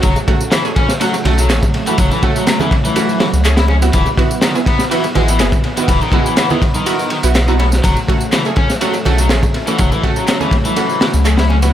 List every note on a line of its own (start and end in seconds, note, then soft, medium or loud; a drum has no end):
0.00 0.14 F#1 loud
0.00 3.90 C#3 medium
0.00 7.80 F#3 medium
0.00 0.15 F#3 medium
0.00 0.12 A3 medium
0.00 3.90 A3 medium
0.00 0.12 C#4 medium
0.00 0.12 F#4 medium
0.00 kick loud
0.00 ride medium
0.00 tambourine medium
0.16 tambourine soft
0.16 high bongo medium
0.28 0.62 A3 medium
0.28 0.62 C#4 medium
0.28 0.62 F#4 loud
0.28 kick loud
0.28 ride medium
0.41 tambourine medium
0.52 0.60 E3 loud
0.52 snare loud
0.52 clap loud
0.52 ride medium
0.52 tambourine medium
0.65 0.77 A3 medium
0.65 0.77 C#4 medium
0.65 0.77 G#4 medium
0.65 tambourine soft
0.76 0.89 C#4 loud
0.76 kick medium
0.76 ride medium
0.89 snare medium
0.89 tambourine medium
1.01 1.13 F#3 medium
1.01 1.14 A3 loud
1.01 1.14 C#4 medium
1.01 1.14 F#4 loud
1.01 ride medium
1.01 tambourine medium
1.14 ride soft
1.14 tambourine soft
1.14 high bongo medium
1.25 1.51 B1 medium
1.25 1.39 A3 medium
1.25 1.38 A3 loud
1.25 1.39 C#4 medium
1.25 1.39 F#4 medium
1.25 ride medium
1.25 low conga loud
1.38 1.46 F#3 medium
1.38 ride soft
1.38 tambourine medium
1.38 high bongo soft
1.50 1.61 A1 medium
1.50 1.63 A3 loud
1.50 1.63 C#4 medium
1.50 1.63 G#4 loud
1.50 snare loud
1.50 clap loud
1.50 ride medium
1.50 tambourine medium
1.63 kick loud
1.63 tambourine soft
1.63 high bongo medium
1.74 ride medium
1.86 1.97 E3 medium
1.86 2.07 A3 medium
1.86 2.07 C#4 medium
1.86 2.07 F#4 medium
1.86 ride soft
1.86 tambourine medium
1.98 2.09 F#1 loud
1.98 2.11 F#3 medium
1.98 kick loud
1.98 ride medium
1.98 tambourine medium
2.11 2.22 E3 loud
2.11 tambourine soft
2.11 high bongo medium
2.23 2.57 A3 medium
2.23 2.35 A3 loud
2.23 2.57 C#4 medium
2.23 2.57 F#4 loud
2.23 kick medium
2.23 ride medium
2.36 2.43 F#3 medium
2.36 tambourine medium
2.47 2.56 F#3 medium
2.47 snare loud
2.47 clap loud
2.47 ride medium
2.47 tambourine medium
2.60 2.71 E3 medium
2.60 2.72 A3 medium
2.60 2.72 C#4 medium
2.60 2.72 G#4 medium
2.60 tambourine soft
2.60 low conga medium
2.71 kick loud
2.71 ride medium
2.85 3.19 E3 medium
2.85 tambourine medium
2.85 high conga medium
2.96 3.10 A3 loud
2.96 3.09 C#4 medium
2.96 3.09 F#4 loud
2.96 ride medium
2.96 tambourine medium
3.09 tambourine soft
3.20 3.25 E3 loud
3.20 3.34 A3 medium
3.20 3.34 C#4 medium
3.20 3.34 F#4 medium
3.20 snare loud
3.20 ride medium
3.20 high bongo soft
3.33 3.91 C#2 medium
3.33 tambourine medium
3.45 3.58 A3 medium
3.45 3.58 C#4 medium
3.45 3.58 G#4 loud
3.45 clap loud
3.45 ride medium
3.45 tambourine medium
3.45 high bongo medium
3.57 3.62 E4 medium
3.57 snare loud
3.57 ride medium
3.57 tambourine soft
3.68 3.74 C#4 medium
3.68 high bongo medium
3.82 4.02 B3 medium
3.82 4.02 E4 medium
3.82 4.02 F#4 medium
3.82 ride medium
3.82 tambourine medium
3.93 4.05 E1 loud
3.93 4.06 E3 medium
3.93 7.80 B3 medium
3.93 kick loud
3.93 ride medium
3.93 tambourine medium
4.06 tambourine soft
4.06 high bongo medium
4.17 4.52 B3 medium
4.17 4.52 E4 medium
4.17 4.52 F#4 loud
4.17 kick loud
4.17 ride medium
4.31 tambourine medium
4.42 4.51 D#3 loud
4.42 snare loud
4.42 clap loud
4.42 ride medium
4.42 tambourine medium
4.55 4.67 B3 medium
4.55 4.67 E4 medium
4.55 4.67 G#4 medium
4.55 tambourine soft
4.66 4.79 B3 loud
4.66 kick medium
4.66 ride medium
4.79 snare soft
4.79 tambourine medium
4.91 5.03 E3 medium
4.91 5.05 B3 medium
4.91 5.05 E4 medium
4.91 5.04 F#4 loud
4.91 ride medium
4.91 tambourine medium
5.04 ride soft
5.04 tambourine soft
5.04 high bongo medium
5.15 5.41 A1 medium
5.15 5.28 G#3 loud
5.15 5.29 B3 medium
5.15 5.29 E4 medium
5.15 5.29 F#4 medium
5.15 ride medium
5.15 low conga medium
5.28 5.36 E3 medium
5.28 ride soft
5.28 tambourine medium
5.28 high bongo soft
5.39 5.51 F#1 loud
5.39 5.53 B3 loud
5.39 5.53 E4 medium
5.39 5.53 G#4 loud
5.39 snare loud
5.39 clap loud
5.39 ride medium
5.39 tambourine medium
5.52 kick loud
5.52 tambourine soft
5.52 high bongo medium
5.64 ride medium
5.77 5.88 D#3 medium
5.77 5.97 B3 medium
5.77 5.97 E4 medium
5.77 5.97 F#4 medium
5.77 ride soft
5.77 tambourine medium
5.88 5.99 E1 loud
5.88 6.01 E3 medium
5.88 kick loud
5.88 ride loud
5.88 tambourine medium
6.01 6.12 D#3 loud
6.01 tambourine soft
6.01 high bongo soft
6.12 6.25 G#3 loud
6.12 6.47 B3 medium
6.12 6.47 E4 medium
6.12 6.47 F#4 loud
6.12 kick loud
6.12 ride medium
6.26 6.33 E3 medium
6.26 tambourine medium
6.37 6.46 E3 medium
6.37 snare loud
6.37 clap loud
6.37 ride medium
6.37 tambourine medium
6.50 6.61 D#3 medium
6.50 6.63 B3 medium
6.50 6.63 E4 medium
6.50 6.63 G#4 medium
6.50 tambourine soft
6.50 low conga medium
6.62 kick loud
6.62 ride medium
6.74 7.10 D#3 medium
6.74 tambourine medium
6.74 high conga medium
6.86 7.00 B3 medium
6.86 7.00 E4 medium
6.86 7.00 F#4 loud
6.86 ride medium
6.86 tambourine soft
6.99 tambourine soft
7.10 7.16 D#3 loud
7.10 ride medium
7.10 high bongo soft
7.23 7.81 B1 medium
7.23 7.45 B3 loud
7.23 7.45 E4 medium
7.23 7.45 F#4 loud
7.23 ride soft
7.23 tambourine medium
7.35 snare loud
7.35 clap loud
7.35 ride medium
7.35 tambourine medium
7.35 high bongo medium
7.48 7.58 B3 medium
7.48 7.52 D#4 medium
7.48 7.58 E4 medium
7.48 7.58 F#4 medium
7.48 tambourine soft
7.59 8.05 A3 medium
7.59 7.64 B3 medium
7.59 8.05 C#4 medium
7.59 8.05 F#4 medium
7.59 ride medium
7.59 high bongo medium
7.72 snare soft
7.72 tambourine medium
7.83 7.95 F#1 loud
7.83 11.70 C#3 medium
7.83 11.73 F#3 medium
7.83 7.96 F#3 medium
7.83 11.70 A3 medium
7.83 kick loud
7.83 ride loud
7.83 tambourine soft
7.97 tambourine soft
7.97 high bongo soft
8.08 8.42 A3 medium
8.08 8.43 C#4 medium
8.08 8.43 F#4 loud
8.08 kick loud
8.08 ride medium
8.21 tambourine medium
8.32 8.41 E3 loud
8.32 snare loud
8.32 clap loud
8.32 ride medium
8.32 tambourine medium
8.45 8.58 A3 medium
8.45 8.58 C#4 medium
8.45 8.58 G#4 medium
8.45 tambourine soft
8.56 8.69 C#4 loud
8.56 kick loud
8.56 ride medium
8.70 snare medium
8.70 tambourine medium
8.81 8.94 F#3 medium
8.81 8.95 A3 medium
8.81 8.95 C#4 medium
8.81 8.95 F#4 loud
8.81 ride medium
8.81 tambourine soft
8.94 ride soft
8.94 tambourine soft
8.94 high bongo medium
9.05 9.32 B1 medium
9.05 9.19 A3 medium
9.05 9.18 A3 loud
9.05 9.19 C#4 medium
9.05 9.19 F#4 medium
9.05 ride medium
9.05 low conga medium
9.18 9.27 F#3 medium
9.18 ride soft
9.18 tambourine medium
9.18 high bongo soft
9.29 9.41 A1 medium
9.29 9.43 A3 medium
9.29 9.44 C#4 medium
9.29 9.43 G#4 loud
9.29 snare loud
9.29 clap loud
9.29 ride medium
9.29 tambourine soft
9.43 kick medium
9.43 tambourine soft
9.43 high bongo medium
9.54 ride medium
9.67 9.78 E3 medium
9.67 9.88 A3 medium
9.67 9.88 C#4 medium
9.67 9.88 F#4 medium
9.67 ride soft
9.67 tambourine medium
9.78 9.90 F#1 loud
9.78 9.91 F#3 medium
9.78 kick loud
9.78 ride medium
9.78 tambourine medium
9.92 10.02 E3 loud
9.92 tambourine soft
9.92 high bongo soft
10.03 10.16 A3 loud
10.03 10.38 A3 loud
10.03 10.38 C#4 medium
10.03 10.38 F#4 loud
10.03 kick medium
10.03 ride medium
10.16 10.24 F#3 medium
10.16 tambourine medium
10.28 10.36 F#3 medium
10.28 snare loud
10.28 clap loud
10.28 ride medium
10.28 tambourine medium
10.40 10.52 E3 medium
10.40 10.53 A3 medium
10.40 10.53 C#4 medium
10.40 10.53 G#4 medium
10.40 tambourine soft
10.40 low conga medium
10.51 kick loud
10.51 ride medium
10.65 11.00 E3 medium
10.65 tambourine medium
10.65 high conga medium
10.76 10.90 A3 medium
10.76 10.90 C#4 medium
10.76 10.90 F#4 loud
10.76 ride medium
10.76 tambourine soft
10.89 tambourine soft
11.01 11.06 E3 loud
11.01 11.14 A3 medium
11.01 11.14 C#4 medium
11.01 11.14 F#4 medium
11.01 snare loud
11.01 ride medium
11.01 high bongo soft
11.14 11.71 C#2 loud
11.14 tambourine medium
11.25 11.39 A3 loud
11.25 11.39 C#4 medium
11.25 11.39 G#4 loud
11.25 clap loud
11.25 ride medium
11.25 tambourine medium
11.25 high bongo soft
11.38 11.43 E4 medium
11.38 snare loud
11.38 ride medium
11.38 tambourine soft
11.49 11.55 C#4 medium
11.49 high bongo medium
11.62 11.73 B3 medium
11.62 11.73 E4 medium
11.62 11.73 F#4 medium
11.62 ride medium
11.62 tambourine medium